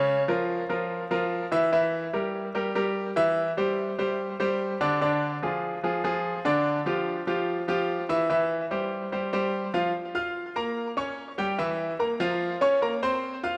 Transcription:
grand piano
Already playing: C#3 C#4 C#5
0.28 F3 F4 A#4
0.69 F3 F4 A#4
1.11 F3 F4 A#4
1.52 E3 E4 E5
1.72 E3 E4 E5
2.13 G3 G4 A#4
2.55 G3 G4 A#4
2.75 G3 G4 A#4
3.16 E3 E4 E5
3.57 G3 G4 C5
3.98 G3 G4 C5
4.40 G3 G4 C5
4.81 D3 D4 D5
5.01 D3 D4 D5
5.43 F3 F4 G#4
5.84 F3 F4 G#4
6.04 F3 F4 G#4
6.45 D3 D4 D5
6.86 F3 F4 G4
7.27 F3 F4 G4
7.68 F3 F4 G4
8.09 E3 E4 E5
8.30 E3 E4 E5
8.71 G3 G4 C5
9.12 G3 G4 C5
9.33 G3 G4 C5
9.74 F3 F4 F5
10.15 F4 F5 F6
10.56 A#3 A#4 A#5
10.97 C#4 C#5 C#6
11.38 G3 G4 G5
11.58 E3 E4 E5
11.99 A#3 A#4 A#5
12.20 F3 F4 F5
12.61 C#4 C#5 C#6
12.82 A#3 A#4 A#5
13.03 C4 C5 C6
13.43 F4 F5 F6

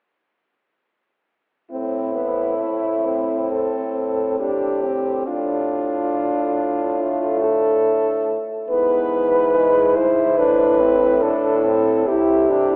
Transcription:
french horn
1.70 A2 C4 E4
2.15 B3
2.58 A3
3.05 C4
3.52 A4
4.40 D4 G4
4.83 C4
5.27 A2 D4 F4
7.01 A3
7.43 A4
8.69 G#2 B3 E4 B4
9.55 G#3
9.96 E4 C5
10.38 A2 D4 B4
10.80 C4
11.22 D4 A4
11.66 C4
12.07 C3 E4 G4
12.49 D4

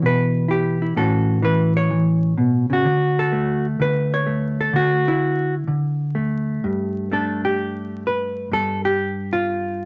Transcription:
hollow-body jazz guitar
Already playing: E3 E4 G4
0.02 B2 B4
0.48 E4 G4
0.82 E4
0.96 A2 E3 C#4 F#4 A4
1.42 E3 B4
1.77 C#5
1.90 E3
2.38 B2
2.70 C#3 F#4
2.85 D3
3.19 A4
3.32 A3
3.80 D3 B4
4.14 C#5
4.26 A3
4.61 A4
4.73 D3 F#4
5.08 E4
5.67 D3
6.15 A3
6.64 G2
7.11 A3 D4 A4
7.45 G4
8.07 B4
8.51 G2 A4
8.85 G4
9.33 F4

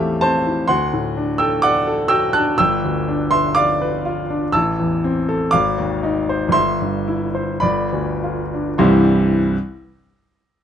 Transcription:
grand piano
Already playing: A1 E2 C4 G4 A4 B4 C5 E5 F5 G5 A5
0.00 A3
0.21 C4 C5 A5
0.47 E4
0.68 D2 F#5 C6
0.93 A2
1.17 D4
1.38 A4 G5 E6
1.62 D5 F#5 D6
1.87 A4
2.08 F#4 G5 E6
2.33 D4 A5 F#6
2.58 G1 G5 E6
2.84 D2
3.08 D4
3.31 B4 E5 C6
3.55 D5 F5 D6
3.82 B4
4.05 F4
4.30 D4
4.52 A1 A5 E6
4.79 E2
5.04 C4
5.29 A4
5.51 G#1 F5 D6
5.78 D#2
6.03 D#4
6.29 C5
6.48 G1 C6
6.53 E5
6.82 G2
7.08 E4
7.35 C5
7.60 G1 D5 B5
7.92 D2
8.24 F4
8.54 D4
8.78 C2 G2 E3 G3 C4 E4 C6

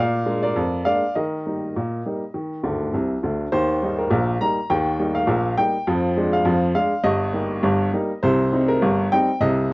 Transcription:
upright piano
Already playing: A#2 D5 F5
0.26 G#3 A#3 D4
0.43 A#4 D5
0.56 F2
0.85 G#3 A#3 D4 D5 F5
1.15 D#3 A#4 D#5
1.46 G3 A#3 D#4
1.76 A#2
2.05 G3 A#3 D#4
2.34 D#3
2.64 D2 D3
2.93 C2 C3
3.23 D2 D3
3.52 D#2 D#3 C5
3.82 G3 A#3 D#4
3.98 A#4
4.10 A#1 A#2
4.41 G3 A#3 D#4 A#5
4.70 D#2 D#3 G5
4.99 G3 A#3 D#4
5.15 F5
5.27 A#1 A#2
5.57 G3 A#3 D#4 G5
5.87 F2 F3
6.17 G#3 D4
6.33 F5
6.45 F2 F3
6.75 G#3 D4 F5
7.04 G1 G2 D#5
7.33 G3 A#3 D#4
7.63 G1 G2
7.93 G3 A#3 D#4
8.23 C2 C3 C5
8.52 G3 C4 D#4
8.68 A#4
8.82 G1 G2
9.12 G3 C4 D#4 G5
9.40 C2 C3 D#5

